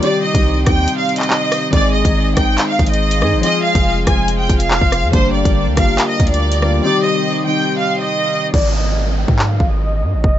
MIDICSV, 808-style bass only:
0, 0, Header, 1, 2, 480
1, 0, Start_track
1, 0, Tempo, 425532
1, 30, Time_signature, 4, 2, 24, 8
1, 11718, End_track
2, 0, Start_track
2, 0, Title_t, "808-style bass"
2, 0, Program_c, 0, 38
2, 390, Note_on_c, 0, 36, 103
2, 736, Note_off_c, 0, 36, 0
2, 751, Note_on_c, 0, 39, 110
2, 981, Note_off_c, 0, 39, 0
2, 1951, Note_on_c, 0, 32, 112
2, 2296, Note_off_c, 0, 32, 0
2, 2310, Note_on_c, 0, 32, 102
2, 2656, Note_off_c, 0, 32, 0
2, 2672, Note_on_c, 0, 32, 111
2, 2901, Note_off_c, 0, 32, 0
2, 3150, Note_on_c, 0, 32, 109
2, 3631, Note_on_c, 0, 44, 98
2, 3648, Note_off_c, 0, 32, 0
2, 3751, Note_on_c, 0, 32, 98
2, 3768, Note_off_c, 0, 44, 0
2, 3865, Note_off_c, 0, 32, 0
2, 4231, Note_on_c, 0, 29, 108
2, 4576, Note_off_c, 0, 29, 0
2, 4592, Note_on_c, 0, 29, 104
2, 5052, Note_off_c, 0, 29, 0
2, 5070, Note_on_c, 0, 29, 106
2, 5416, Note_off_c, 0, 29, 0
2, 5431, Note_on_c, 0, 29, 112
2, 5670, Note_on_c, 0, 41, 105
2, 5687, Note_off_c, 0, 29, 0
2, 5784, Note_off_c, 0, 41, 0
2, 5791, Note_on_c, 0, 31, 111
2, 6136, Note_off_c, 0, 31, 0
2, 6151, Note_on_c, 0, 31, 108
2, 6390, Note_on_c, 0, 38, 104
2, 6407, Note_off_c, 0, 31, 0
2, 6504, Note_off_c, 0, 38, 0
2, 6511, Note_on_c, 0, 31, 109
2, 6741, Note_off_c, 0, 31, 0
2, 6990, Note_on_c, 0, 38, 104
2, 7681, Note_off_c, 0, 38, 0
2, 9631, Note_on_c, 0, 32, 108
2, 10437, Note_off_c, 0, 32, 0
2, 10471, Note_on_c, 0, 44, 103
2, 10816, Note_off_c, 0, 44, 0
2, 10830, Note_on_c, 0, 32, 108
2, 11311, Note_on_c, 0, 44, 97
2, 11328, Note_off_c, 0, 32, 0
2, 11430, Note_on_c, 0, 32, 99
2, 11447, Note_off_c, 0, 44, 0
2, 11544, Note_off_c, 0, 32, 0
2, 11551, Note_on_c, 0, 29, 104
2, 11718, Note_off_c, 0, 29, 0
2, 11718, End_track
0, 0, End_of_file